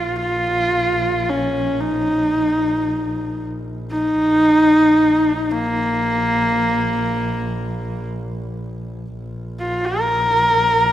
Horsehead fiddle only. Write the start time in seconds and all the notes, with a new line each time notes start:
Already playing: F4
0.19 F4
1.29 C#4
1.80 D#4
3.91 D#4
5.51 A#3
9.60 F4
9.85 A#4